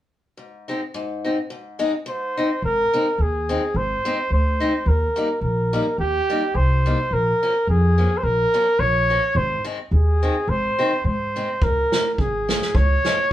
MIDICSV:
0, 0, Header, 1, 5, 480
1, 0, Start_track
1, 0, Key_signature, -4, "major"
1, 0, Tempo, 562852
1, 321, Time_signature, 2, 2, 24, 8
1, 11366, End_track
2, 0, Start_track
2, 0, Title_t, "Trumpet"
2, 0, Program_c, 0, 56
2, 1777, Note_on_c, 0, 72, 75
2, 2215, Note_off_c, 0, 72, 0
2, 2261, Note_on_c, 0, 70, 97
2, 2743, Note_on_c, 0, 68, 76
2, 2756, Note_off_c, 0, 70, 0
2, 3212, Note_on_c, 0, 72, 102
2, 3225, Note_off_c, 0, 68, 0
2, 3679, Note_off_c, 0, 72, 0
2, 3692, Note_on_c, 0, 72, 78
2, 4161, Note_on_c, 0, 70, 85
2, 4174, Note_off_c, 0, 72, 0
2, 4625, Note_off_c, 0, 70, 0
2, 4630, Note_on_c, 0, 70, 72
2, 5071, Note_off_c, 0, 70, 0
2, 5113, Note_on_c, 0, 67, 103
2, 5593, Note_on_c, 0, 72, 81
2, 5606, Note_off_c, 0, 67, 0
2, 6083, Note_on_c, 0, 70, 97
2, 6095, Note_off_c, 0, 72, 0
2, 6555, Note_off_c, 0, 70, 0
2, 6566, Note_on_c, 0, 68, 83
2, 6973, Note_on_c, 0, 72, 69
2, 6986, Note_off_c, 0, 68, 0
2, 7025, Note_on_c, 0, 70, 109
2, 7038, Note_off_c, 0, 72, 0
2, 7500, Note_on_c, 0, 73, 92
2, 7513, Note_off_c, 0, 70, 0
2, 7983, Note_on_c, 0, 72, 87
2, 7996, Note_off_c, 0, 73, 0
2, 8241, Note_off_c, 0, 72, 0
2, 8474, Note_on_c, 0, 68, 78
2, 8946, Note_on_c, 0, 72, 103
2, 8959, Note_off_c, 0, 68, 0
2, 9425, Note_off_c, 0, 72, 0
2, 9430, Note_on_c, 0, 72, 83
2, 9922, Note_on_c, 0, 70, 110
2, 9935, Note_off_c, 0, 72, 0
2, 10348, Note_off_c, 0, 70, 0
2, 10348, Note_on_c, 0, 70, 53
2, 10403, Note_on_c, 0, 68, 82
2, 10416, Note_off_c, 0, 70, 0
2, 10879, Note_on_c, 0, 73, 95
2, 10892, Note_off_c, 0, 68, 0
2, 11366, Note_off_c, 0, 73, 0
2, 11366, End_track
3, 0, Start_track
3, 0, Title_t, "Steel-string acoustic guitar"
3, 0, Program_c, 1, 25
3, 319, Note_on_c, 1, 44, 44
3, 581, Note_on_c, 1, 63, 49
3, 588, Note_on_c, 1, 60, 44
3, 592, Note_on_c, 1, 56, 53
3, 682, Note_off_c, 1, 56, 0
3, 683, Note_off_c, 1, 60, 0
3, 683, Note_off_c, 1, 63, 0
3, 686, Note_off_c, 1, 44, 0
3, 804, Note_on_c, 1, 44, 63
3, 1062, Note_on_c, 1, 63, 51
3, 1065, Note_on_c, 1, 60, 34
3, 1072, Note_on_c, 1, 56, 40
3, 1160, Note_off_c, 1, 56, 0
3, 1160, Note_off_c, 1, 60, 0
3, 1161, Note_off_c, 1, 63, 0
3, 1166, Note_off_c, 1, 44, 0
3, 1281, Note_on_c, 1, 44, 59
3, 1527, Note_on_c, 1, 56, 52
3, 1531, Note_on_c, 1, 63, 68
3, 1535, Note_on_c, 1, 60, 51
3, 1631, Note_off_c, 1, 56, 0
3, 1633, Note_off_c, 1, 63, 0
3, 1635, Note_off_c, 1, 60, 0
3, 1643, Note_off_c, 1, 44, 0
3, 1756, Note_on_c, 1, 44, 59
3, 2025, Note_on_c, 1, 63, 61
3, 2032, Note_on_c, 1, 60, 37
3, 2036, Note_on_c, 1, 56, 42
3, 2122, Note_off_c, 1, 44, 0
3, 2122, Note_off_c, 1, 56, 0
3, 2122, Note_off_c, 1, 63, 0
3, 2123, Note_off_c, 1, 60, 0
3, 2503, Note_on_c, 1, 56, 49
3, 2509, Note_on_c, 1, 60, 43
3, 2509, Note_on_c, 1, 63, 54
3, 2600, Note_off_c, 1, 56, 0
3, 2601, Note_off_c, 1, 60, 0
3, 2602, Note_off_c, 1, 63, 0
3, 2977, Note_on_c, 1, 56, 45
3, 2979, Note_on_c, 1, 60, 50
3, 2987, Note_on_c, 1, 63, 48
3, 3075, Note_off_c, 1, 56, 0
3, 3077, Note_off_c, 1, 60, 0
3, 3077, Note_off_c, 1, 63, 0
3, 3455, Note_on_c, 1, 56, 57
3, 3460, Note_on_c, 1, 63, 63
3, 3463, Note_on_c, 1, 60, 47
3, 3552, Note_off_c, 1, 56, 0
3, 3554, Note_off_c, 1, 63, 0
3, 3556, Note_off_c, 1, 60, 0
3, 3926, Note_on_c, 1, 63, 54
3, 3934, Note_on_c, 1, 60, 47
3, 3935, Note_on_c, 1, 56, 47
3, 4026, Note_off_c, 1, 56, 0
3, 4026, Note_off_c, 1, 63, 0
3, 4027, Note_off_c, 1, 60, 0
3, 4399, Note_on_c, 1, 58, 47
3, 4403, Note_on_c, 1, 55, 45
3, 4410, Note_on_c, 1, 63, 55
3, 4499, Note_off_c, 1, 58, 0
3, 4501, Note_off_c, 1, 55, 0
3, 4504, Note_off_c, 1, 63, 0
3, 4887, Note_on_c, 1, 55, 52
3, 4889, Note_on_c, 1, 58, 42
3, 4896, Note_on_c, 1, 63, 50
3, 4982, Note_off_c, 1, 55, 0
3, 4984, Note_off_c, 1, 58, 0
3, 4985, Note_off_c, 1, 63, 0
3, 5369, Note_on_c, 1, 55, 49
3, 5373, Note_on_c, 1, 58, 51
3, 5379, Note_on_c, 1, 63, 47
3, 5464, Note_off_c, 1, 55, 0
3, 5467, Note_off_c, 1, 58, 0
3, 5467, Note_off_c, 1, 63, 0
3, 5848, Note_on_c, 1, 55, 42
3, 5852, Note_on_c, 1, 58, 38
3, 5857, Note_on_c, 1, 63, 46
3, 5945, Note_off_c, 1, 55, 0
3, 5948, Note_off_c, 1, 58, 0
3, 5949, Note_off_c, 1, 63, 0
3, 6334, Note_on_c, 1, 61, 63
3, 6336, Note_on_c, 1, 58, 39
3, 6340, Note_on_c, 1, 53, 41
3, 6429, Note_off_c, 1, 53, 0
3, 6429, Note_off_c, 1, 58, 0
3, 6430, Note_off_c, 1, 61, 0
3, 6804, Note_on_c, 1, 61, 48
3, 6808, Note_on_c, 1, 58, 38
3, 6813, Note_on_c, 1, 53, 47
3, 6904, Note_off_c, 1, 53, 0
3, 6905, Note_off_c, 1, 58, 0
3, 6905, Note_off_c, 1, 61, 0
3, 7282, Note_on_c, 1, 53, 55
3, 7286, Note_on_c, 1, 61, 66
3, 7289, Note_on_c, 1, 58, 36
3, 7381, Note_off_c, 1, 53, 0
3, 7383, Note_off_c, 1, 58, 0
3, 7383, Note_off_c, 1, 61, 0
3, 7760, Note_on_c, 1, 61, 53
3, 7766, Note_on_c, 1, 58, 44
3, 7768, Note_on_c, 1, 53, 41
3, 7860, Note_off_c, 1, 53, 0
3, 7861, Note_off_c, 1, 58, 0
3, 7861, Note_off_c, 1, 61, 0
3, 8225, Note_on_c, 1, 51, 60
3, 8230, Note_on_c, 1, 60, 57
3, 8233, Note_on_c, 1, 56, 52
3, 8332, Note_off_c, 1, 51, 0
3, 8333, Note_off_c, 1, 60, 0
3, 8335, Note_off_c, 1, 56, 0
3, 8720, Note_on_c, 1, 60, 48
3, 8723, Note_on_c, 1, 56, 47
3, 8728, Note_on_c, 1, 51, 41
3, 8820, Note_off_c, 1, 51, 0
3, 8820, Note_off_c, 1, 56, 0
3, 8822, Note_off_c, 1, 60, 0
3, 9198, Note_on_c, 1, 60, 64
3, 9202, Note_on_c, 1, 56, 44
3, 9209, Note_on_c, 1, 51, 42
3, 9302, Note_off_c, 1, 51, 0
3, 9302, Note_off_c, 1, 56, 0
3, 9303, Note_off_c, 1, 60, 0
3, 9686, Note_on_c, 1, 51, 42
3, 9691, Note_on_c, 1, 60, 48
3, 9692, Note_on_c, 1, 56, 36
3, 9788, Note_off_c, 1, 51, 0
3, 9789, Note_off_c, 1, 56, 0
3, 9790, Note_off_c, 1, 60, 0
3, 10170, Note_on_c, 1, 61, 58
3, 10173, Note_on_c, 1, 56, 47
3, 10178, Note_on_c, 1, 53, 37
3, 10272, Note_off_c, 1, 53, 0
3, 10272, Note_off_c, 1, 56, 0
3, 10273, Note_off_c, 1, 61, 0
3, 10648, Note_on_c, 1, 53, 43
3, 10651, Note_on_c, 1, 56, 40
3, 10658, Note_on_c, 1, 61, 47
3, 10750, Note_off_c, 1, 53, 0
3, 10753, Note_off_c, 1, 56, 0
3, 10754, Note_off_c, 1, 61, 0
3, 11126, Note_on_c, 1, 53, 45
3, 11132, Note_on_c, 1, 56, 57
3, 11134, Note_on_c, 1, 61, 51
3, 11229, Note_off_c, 1, 53, 0
3, 11232, Note_off_c, 1, 61, 0
3, 11233, Note_off_c, 1, 56, 0
3, 11366, End_track
4, 0, Start_track
4, 0, Title_t, "Upright bass"
4, 0, Program_c, 2, 32
4, 2237, Note_on_c, 2, 32, 70
4, 2406, Note_off_c, 2, 32, 0
4, 2715, Note_on_c, 2, 39, 71
4, 3026, Note_off_c, 2, 39, 0
4, 3193, Note_on_c, 2, 32, 73
4, 3361, Note_off_c, 2, 32, 0
4, 3670, Note_on_c, 2, 38, 64
4, 3979, Note_off_c, 2, 38, 0
4, 4143, Note_on_c, 2, 39, 75
4, 4310, Note_off_c, 2, 39, 0
4, 4616, Note_on_c, 2, 34, 68
4, 4928, Note_off_c, 2, 34, 0
4, 5101, Note_on_c, 2, 39, 67
4, 5270, Note_off_c, 2, 39, 0
4, 5581, Note_on_c, 2, 36, 74
4, 5895, Note_off_c, 2, 36, 0
4, 6062, Note_on_c, 2, 34, 65
4, 6232, Note_off_c, 2, 34, 0
4, 6544, Note_on_c, 2, 41, 73
4, 6856, Note_off_c, 2, 41, 0
4, 7021, Note_on_c, 2, 34, 69
4, 7190, Note_off_c, 2, 34, 0
4, 7497, Note_on_c, 2, 34, 70
4, 7810, Note_off_c, 2, 34, 0
4, 7973, Note_on_c, 2, 32, 84
4, 8144, Note_off_c, 2, 32, 0
4, 8455, Note_on_c, 2, 39, 79
4, 8770, Note_off_c, 2, 39, 0
4, 8933, Note_on_c, 2, 32, 74
4, 9106, Note_off_c, 2, 32, 0
4, 9418, Note_on_c, 2, 44, 67
4, 9736, Note_off_c, 2, 44, 0
4, 9907, Note_on_c, 2, 37, 61
4, 10079, Note_off_c, 2, 37, 0
4, 10389, Note_on_c, 2, 32, 61
4, 10703, Note_off_c, 2, 32, 0
4, 10869, Note_on_c, 2, 37, 70
4, 11039, Note_off_c, 2, 37, 0
4, 11366, End_track
5, 0, Start_track
5, 0, Title_t, "Drums"
5, 9906, Note_on_c, 9, 36, 61
5, 9991, Note_off_c, 9, 36, 0
5, 10166, Note_on_c, 9, 38, 52
5, 10251, Note_off_c, 9, 38, 0
5, 10391, Note_on_c, 9, 36, 47
5, 10476, Note_off_c, 9, 36, 0
5, 10650, Note_on_c, 9, 38, 62
5, 10736, Note_off_c, 9, 38, 0
5, 10760, Note_on_c, 9, 38, 51
5, 10846, Note_off_c, 9, 38, 0
5, 10870, Note_on_c, 9, 36, 69
5, 10956, Note_off_c, 9, 36, 0
5, 11126, Note_on_c, 9, 38, 69
5, 11211, Note_off_c, 9, 38, 0
5, 11366, End_track
0, 0, End_of_file